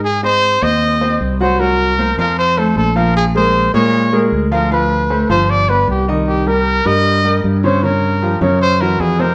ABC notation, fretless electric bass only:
X:1
M:4/4
L:1/8
Q:1/4=154
K:Ab
V:1 name="Fretless electric bass" clef=bass
A,,3 E,,3 C,,2- | C,,3 F,,3 B,,,2- | B,,,3 B,,3 =D,,2- | =D,,3 G,,,3 C,,2- |
C,,3 G,,3 G,,2- | G,,3 _G,,3 F,,2 |]